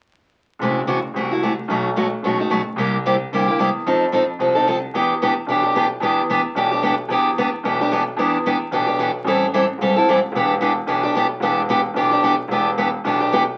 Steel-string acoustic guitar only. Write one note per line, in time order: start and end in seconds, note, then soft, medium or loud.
0.62 0.80 C3 medium
0.62 0.80 E3 medium
0.62 0.80 A3 medium
0.62 0.80 E4 medium
0.62 0.80 F#4 medium
0.87 0.98 C3 medium
0.87 0.98 E3 medium
0.87 0.98 A3 medium
0.87 0.99 E4 medium
0.87 0.99 F#4 medium
1.16 1.30 C3 soft
1.16 1.31 E3 soft
1.16 1.31 A3 medium
1.16 1.31 E4 medium
1.16 1.30 F#4 medium
1.31 1.42 A3 soft
1.31 1.42 E4 soft
1.31 1.42 F#4 soft
1.43 1.52 C3 medium
1.43 1.52 E3 medium
1.43 1.52 A3 medium
1.43 1.52 E4 medium
1.43 1.53 F#4 medium
1.70 1.88 B2 soft
1.70 1.88 F#3 medium
1.70 1.89 A3 medium
1.70 1.89 D#4 medium
1.70 1.89 F#4 medium
1.96 2.06 B2 medium
1.96 2.06 F#3 medium
1.96 2.06 A3 medium
1.96 2.06 D#4 medium
1.96 2.06 F#4 medium
2.24 2.39 B2 medium
2.24 2.39 F#3 medium
2.24 2.39 A3 medium
2.24 2.39 D#4 medium
2.24 2.38 F#4 medium
2.39 2.50 A3 soft
2.39 2.50 D#4 soft
2.39 2.50 F#4 soft
2.50 2.60 B2 medium
2.50 2.60 F#3 medium
2.50 2.60 A3 medium
2.50 2.60 D#4 medium
2.50 2.60 F#4 medium
2.78 2.96 C3 medium
2.78 2.96 G3 medium
2.78 2.97 A#3 medium
2.78 2.97 E4 medium
2.78 2.97 G4 medium
3.06 3.14 C3 medium
3.06 3.15 G3 medium
3.06 3.15 A#3 medium
3.06 3.15 E4 medium
3.06 3.15 G4 medium
3.33 3.47 C3 medium
3.33 3.47 G3 medium
3.33 3.48 A#3 medium
3.33 3.48 E4 medium
3.33 3.46 G4 medium
3.48 3.59 A#3 soft
3.48 3.59 E4 soft
3.48 3.59 G4 soft
3.59 3.68 C3 medium
3.59 3.68 G3 medium
3.59 3.69 A#3 medium
3.59 3.69 E4 medium
3.59 3.69 G4 medium
3.86 4.05 F3 medium
3.86 4.05 C4 medium
3.86 4.05 D#4 medium
3.86 4.05 A4 medium
4.12 4.22 F3 medium
4.12 4.22 C4 medium
4.12 4.23 D#4 medium
4.12 4.23 A4 medium
4.40 4.55 F3 soft
4.40 4.55 C4 medium
4.40 4.55 D#4 medium
4.40 4.54 A4 medium
4.55 4.67 C4 soft
4.55 4.67 D#4 soft
4.55 4.67 A4 soft
4.67 4.76 F3 medium
4.67 4.77 C4 medium
4.67 4.77 D#4 medium
4.67 4.77 A4 medium
4.95 5.13 E3 medium
4.95 5.13 B3 medium
4.95 5.13 D4 medium
4.95 5.13 G4 medium
5.22 5.32 E3 medium
5.22 5.32 B3 medium
5.22 5.32 D4 medium
5.22 5.33 G4 medium
5.49 5.63 E3 medium
5.49 5.64 B3 medium
5.49 5.63 D4 medium
5.49 5.62 G4 medium
5.63 5.75 B3 soft
5.63 5.75 D4 soft
5.63 5.75 G4 soft
5.75 5.86 E3 medium
5.75 5.86 B3 medium
5.75 5.86 D4 medium
5.75 5.87 G4 medium
6.02 6.21 E3 medium
6.02 6.21 B3 medium
6.02 6.21 D4 medium
6.02 6.21 G4 medium
6.30 6.40 E3 medium
6.30 6.40 B3 medium
6.30 6.40 D4 medium
6.30 6.41 G4 medium
6.56 6.71 E3 medium
6.56 6.71 B3 medium
6.56 6.71 D4 medium
6.56 6.70 G4 medium
6.71 6.82 B3 soft
6.71 6.82 D4 soft
6.71 6.83 G4 soft
6.83 6.93 E3 medium
6.83 6.94 B3 medium
6.83 6.94 D4 medium
6.83 6.94 G4 medium
7.10 7.29 E3 medium
7.10 7.29 B3 medium
7.10 7.30 D4 medium
7.10 7.29 G4 medium
7.38 7.48 E3 medium
7.38 7.48 B3 medium
7.38 7.49 D4 medium
7.38 7.49 G4 medium
7.65 7.79 E3 medium
7.65 7.79 B3 medium
7.65 7.80 D4 medium
7.65 7.80 G4 medium
7.81 7.91 B3 soft
7.81 7.92 D4 soft
7.81 7.91 G4 medium
7.92 8.02 E3 medium
7.92 8.02 B3 medium
7.92 8.02 D4 medium
7.92 8.02 G4 medium
8.19 8.37 E3 medium
8.19 8.37 B3 medium
8.19 8.37 D4 medium
8.19 8.37 G4 medium
8.46 8.56 E3 medium
8.46 8.56 B3 medium
8.46 8.56 D4 medium
8.46 8.56 G4 medium
8.72 8.87 E3 medium
8.72 8.87 B3 medium
8.72 8.86 D4 medium
8.72 8.85 G4 medium
8.87 8.99 B3 soft
8.87 8.99 D4 soft
8.87 8.98 G4 soft
8.99 9.09 E3 medium
8.99 9.10 B3 medium
8.99 9.10 D4 medium
8.99 9.10 G4 medium
9.27 9.45 E3 medium
9.27 9.45 G3 medium
9.27 9.45 C4 medium
9.27 9.45 E4 medium
9.27 9.45 A4 medium
9.54 9.64 E3 medium
9.54 9.64 G3 medium
9.54 9.64 C4 medium
9.54 9.64 E4 medium
9.54 9.64 A4 medium
9.81 9.95 E3 medium
9.81 9.96 G3 medium
9.81 9.96 C4 medium
9.81 9.96 E4 medium
9.81 9.95 A4 medium
9.96 10.08 C4 soft
9.96 10.08 E4 soft
9.96 10.07 A4 soft
10.09 10.18 E3 medium
10.09 10.18 G3 medium
10.09 10.19 C4 medium
10.09 10.19 E4 medium
10.09 10.19 A4 medium
10.35 10.53 E3 medium
10.35 10.53 B3 medium
10.35 10.53 D4 medium
10.35 10.54 G4 medium
10.61 10.71 E3 medium
10.61 10.71 B3 medium
10.61 10.72 D4 medium
10.61 10.72 G4 medium
10.87 11.02 E3 medium
10.87 11.03 B3 medium
10.87 11.03 D4 medium
10.87 11.02 G4 medium
11.03 11.16 B3 soft
11.03 11.15 D4 soft
11.03 11.15 G4 medium
11.15 11.25 E3 medium
11.15 11.26 B3 medium
11.15 11.26 D4 medium
11.15 11.26 G4 medium
11.42 11.61 E3 medium
11.42 11.61 B3 medium
11.42 11.61 D4 medium
11.42 11.61 G4 medium
11.69 11.79 E3 medium
11.69 11.80 B3 medium
11.69 11.80 D4 medium
11.69 11.80 G4 medium
11.96 12.11 E3 medium
11.96 12.11 B3 medium
11.96 12.11 D4 medium
11.96 12.10 G4 medium
12.11 12.22 B3 soft
12.11 12.23 D4 soft
12.11 12.23 G4 medium
12.23 12.33 E3 medium
12.23 12.34 B3 medium
12.23 12.34 D4 medium
12.23 12.34 G4 medium
12.51 12.69 E3 medium
12.51 12.69 B3 medium
12.51 12.69 D4 medium
12.51 12.70 G4 medium
12.78 12.88 E3 medium
12.78 12.88 B3 medium
12.78 12.88 D4 medium
12.78 12.89 G4 medium
13.05 13.19 E3 medium
13.05 13.19 B3 medium
13.05 13.20 D4 medium
13.05 13.19 G4 medium
13.20 13.32 B3 soft
13.20 13.32 D4 soft
13.20 13.31 G4 soft
13.32 13.42 E3 medium
13.32 13.42 B3 medium
13.32 13.43 D4 medium
13.32 13.43 G4 medium